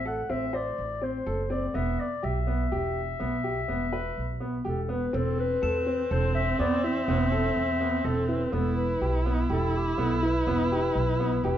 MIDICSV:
0, 0, Header, 1, 6, 480
1, 0, Start_track
1, 0, Key_signature, 1, "minor"
1, 0, Tempo, 484653
1, 1731, Time_signature, 7, 2, 24, 8
1, 11467, End_track
2, 0, Start_track
2, 0, Title_t, "Crotales"
2, 0, Program_c, 0, 9
2, 5575, Note_on_c, 0, 100, 58
2, 6848, Note_off_c, 0, 100, 0
2, 11467, End_track
3, 0, Start_track
3, 0, Title_t, "Clarinet"
3, 0, Program_c, 1, 71
3, 68, Note_on_c, 1, 78, 68
3, 302, Note_on_c, 1, 76, 74
3, 317, Note_off_c, 1, 78, 0
3, 541, Note_on_c, 1, 74, 76
3, 556, Note_off_c, 1, 76, 0
3, 1020, Note_on_c, 1, 72, 73
3, 1035, Note_off_c, 1, 74, 0
3, 1489, Note_off_c, 1, 72, 0
3, 1495, Note_on_c, 1, 74, 70
3, 1735, Note_on_c, 1, 76, 68
3, 1749, Note_off_c, 1, 74, 0
3, 1978, Note_on_c, 1, 74, 72
3, 1993, Note_off_c, 1, 76, 0
3, 2216, Note_on_c, 1, 76, 74
3, 2231, Note_off_c, 1, 74, 0
3, 4461, Note_off_c, 1, 76, 0
3, 4630, Note_on_c, 1, 69, 58
3, 4841, Note_off_c, 1, 69, 0
3, 4862, Note_on_c, 1, 71, 72
3, 5100, Note_on_c, 1, 69, 77
3, 5115, Note_off_c, 1, 71, 0
3, 5333, Note_off_c, 1, 69, 0
3, 5345, Note_on_c, 1, 71, 83
3, 6015, Note_off_c, 1, 71, 0
3, 6057, Note_on_c, 1, 72, 87
3, 6274, Note_off_c, 1, 72, 0
3, 6285, Note_on_c, 1, 76, 84
3, 6508, Note_off_c, 1, 76, 0
3, 6527, Note_on_c, 1, 74, 81
3, 6749, Note_off_c, 1, 74, 0
3, 6773, Note_on_c, 1, 76, 89
3, 7977, Note_on_c, 1, 69, 74
3, 7992, Note_off_c, 1, 76, 0
3, 8203, Note_on_c, 1, 71, 72
3, 8218, Note_off_c, 1, 69, 0
3, 8430, Note_on_c, 1, 69, 71
3, 8445, Note_off_c, 1, 71, 0
3, 8670, Note_off_c, 1, 69, 0
3, 8676, Note_on_c, 1, 71, 76
3, 9104, Note_off_c, 1, 71, 0
3, 9429, Note_on_c, 1, 69, 79
3, 9662, Note_on_c, 1, 67, 72
3, 9677, Note_off_c, 1, 69, 0
3, 9907, Note_on_c, 1, 69, 68
3, 9922, Note_off_c, 1, 67, 0
3, 10145, Note_on_c, 1, 71, 79
3, 10160, Note_off_c, 1, 69, 0
3, 11327, Note_off_c, 1, 71, 0
3, 11333, Note_on_c, 1, 71, 81
3, 11467, Note_off_c, 1, 71, 0
3, 11467, End_track
4, 0, Start_track
4, 0, Title_t, "Grand piano"
4, 0, Program_c, 2, 0
4, 53, Note_on_c, 2, 69, 65
4, 188, Note_off_c, 2, 69, 0
4, 292, Note_on_c, 2, 60, 67
4, 427, Note_off_c, 2, 60, 0
4, 526, Note_on_c, 2, 72, 57
4, 796, Note_off_c, 2, 72, 0
4, 1006, Note_on_c, 2, 60, 54
4, 1142, Note_off_c, 2, 60, 0
4, 1251, Note_on_c, 2, 69, 69
4, 1386, Note_off_c, 2, 69, 0
4, 1485, Note_on_c, 2, 60, 60
4, 1621, Note_off_c, 2, 60, 0
4, 1725, Note_on_c, 2, 59, 62
4, 1995, Note_off_c, 2, 59, 0
4, 2204, Note_on_c, 2, 67, 60
4, 2340, Note_off_c, 2, 67, 0
4, 2446, Note_on_c, 2, 59, 59
4, 2581, Note_off_c, 2, 59, 0
4, 2691, Note_on_c, 2, 67, 66
4, 2959, Note_off_c, 2, 67, 0
4, 3165, Note_on_c, 2, 59, 63
4, 3300, Note_off_c, 2, 59, 0
4, 3406, Note_on_c, 2, 67, 60
4, 3540, Note_off_c, 2, 67, 0
4, 3647, Note_on_c, 2, 59, 65
4, 3781, Note_off_c, 2, 59, 0
4, 3888, Note_on_c, 2, 71, 55
4, 4156, Note_off_c, 2, 71, 0
4, 4362, Note_on_c, 2, 59, 53
4, 4497, Note_off_c, 2, 59, 0
4, 4600, Note_on_c, 2, 67, 62
4, 4736, Note_off_c, 2, 67, 0
4, 4840, Note_on_c, 2, 59, 58
4, 4976, Note_off_c, 2, 59, 0
4, 5082, Note_on_c, 2, 60, 69
4, 5352, Note_off_c, 2, 60, 0
4, 5566, Note_on_c, 2, 69, 64
4, 5700, Note_off_c, 2, 69, 0
4, 5807, Note_on_c, 2, 60, 61
4, 5941, Note_off_c, 2, 60, 0
4, 6050, Note_on_c, 2, 69, 66
4, 6317, Note_off_c, 2, 69, 0
4, 6526, Note_on_c, 2, 59, 66
4, 6660, Note_off_c, 2, 59, 0
4, 6771, Note_on_c, 2, 64, 61
4, 6904, Note_off_c, 2, 64, 0
4, 7013, Note_on_c, 2, 59, 74
4, 7145, Note_off_c, 2, 59, 0
4, 7247, Note_on_c, 2, 69, 62
4, 7515, Note_off_c, 2, 69, 0
4, 7730, Note_on_c, 2, 59, 54
4, 7863, Note_off_c, 2, 59, 0
4, 7969, Note_on_c, 2, 69, 64
4, 8103, Note_off_c, 2, 69, 0
4, 8206, Note_on_c, 2, 64, 67
4, 8341, Note_off_c, 2, 64, 0
4, 8442, Note_on_c, 2, 59, 66
4, 8713, Note_off_c, 2, 59, 0
4, 8928, Note_on_c, 2, 67, 63
4, 9062, Note_off_c, 2, 67, 0
4, 9169, Note_on_c, 2, 59, 65
4, 9303, Note_off_c, 2, 59, 0
4, 9406, Note_on_c, 2, 67, 67
4, 9676, Note_off_c, 2, 67, 0
4, 9882, Note_on_c, 2, 59, 73
4, 10019, Note_off_c, 2, 59, 0
4, 10125, Note_on_c, 2, 64, 71
4, 10261, Note_off_c, 2, 64, 0
4, 10369, Note_on_c, 2, 59, 77
4, 10504, Note_off_c, 2, 59, 0
4, 10615, Note_on_c, 2, 67, 70
4, 10884, Note_off_c, 2, 67, 0
4, 11091, Note_on_c, 2, 59, 65
4, 11226, Note_off_c, 2, 59, 0
4, 11333, Note_on_c, 2, 67, 74
4, 11467, Note_off_c, 2, 67, 0
4, 11467, End_track
5, 0, Start_track
5, 0, Title_t, "Viola"
5, 0, Program_c, 3, 41
5, 5087, Note_on_c, 3, 60, 85
5, 8456, Note_on_c, 3, 64, 98
5, 8471, Note_off_c, 3, 60, 0
5, 11467, Note_off_c, 3, 64, 0
5, 11467, End_track
6, 0, Start_track
6, 0, Title_t, "Upright bass"
6, 0, Program_c, 4, 32
6, 0, Note_on_c, 4, 33, 71
6, 227, Note_off_c, 4, 33, 0
6, 294, Note_on_c, 4, 33, 69
6, 706, Note_off_c, 4, 33, 0
6, 774, Note_on_c, 4, 33, 68
6, 1185, Note_off_c, 4, 33, 0
6, 1252, Note_on_c, 4, 30, 74
6, 1663, Note_off_c, 4, 30, 0
6, 1732, Note_on_c, 4, 28, 81
6, 1937, Note_off_c, 4, 28, 0
6, 2213, Note_on_c, 4, 35, 79
6, 2623, Note_off_c, 4, 35, 0
6, 2693, Note_on_c, 4, 28, 70
6, 3102, Note_off_c, 4, 28, 0
6, 3172, Note_on_c, 4, 35, 73
6, 3582, Note_off_c, 4, 35, 0
6, 3652, Note_on_c, 4, 28, 62
6, 4061, Note_off_c, 4, 28, 0
6, 4134, Note_on_c, 4, 35, 64
6, 4542, Note_off_c, 4, 35, 0
6, 4613, Note_on_c, 4, 28, 74
6, 5021, Note_off_c, 4, 28, 0
6, 5090, Note_on_c, 4, 28, 89
6, 5500, Note_off_c, 4, 28, 0
6, 5571, Note_on_c, 4, 40, 81
6, 5980, Note_off_c, 4, 40, 0
6, 6050, Note_on_c, 4, 28, 90
6, 6460, Note_off_c, 4, 28, 0
6, 6528, Note_on_c, 4, 40, 78
6, 6939, Note_off_c, 4, 40, 0
6, 7010, Note_on_c, 4, 28, 82
6, 7420, Note_off_c, 4, 28, 0
6, 7491, Note_on_c, 4, 40, 70
6, 7901, Note_off_c, 4, 40, 0
6, 7967, Note_on_c, 4, 28, 80
6, 8379, Note_off_c, 4, 28, 0
6, 8446, Note_on_c, 4, 28, 89
6, 8859, Note_off_c, 4, 28, 0
6, 8923, Note_on_c, 4, 35, 76
6, 9338, Note_off_c, 4, 35, 0
6, 9403, Note_on_c, 4, 28, 84
6, 9818, Note_off_c, 4, 28, 0
6, 9886, Note_on_c, 4, 35, 78
6, 10300, Note_off_c, 4, 35, 0
6, 10367, Note_on_c, 4, 28, 76
6, 10781, Note_off_c, 4, 28, 0
6, 10845, Note_on_c, 4, 35, 81
6, 11261, Note_off_c, 4, 35, 0
6, 11327, Note_on_c, 4, 28, 81
6, 11467, Note_off_c, 4, 28, 0
6, 11467, End_track
0, 0, End_of_file